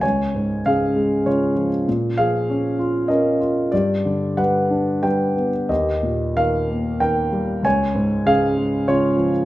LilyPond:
<<
  \new Staff \with { instrumentName = "Grand piano" } { \time 3/4 \key des \lydian \tempo 4 = 96 <des'' aes''>4 <aes' f''>4 <f' des''>8. r16 | r8 <aes' f''>4. <bes' ees''>4 | <g' d''>4 <b' ges''>4 <b' g''>8. r16 | <g' ees''>4 <bes' f''>4 <bes' g''>4 |
<des'' aes''>4 <aes' f''>4 <f' des''>8. r16 | }
  \new Staff \with { instrumentName = "Grand piano" } { \clef bass \time 3/4 \key des \lydian des,8 aes,8 des8 aes8 des8 f8 | bes,8 f8 des'8 f'8 des'8 f'8 | g,8 d8 g8 d'8 g8 b8 | ees,8 bes,8 ees8 bes8 ees8 g8 |
des,8 aes,8 des8 aes8 des8 f8 | }
>>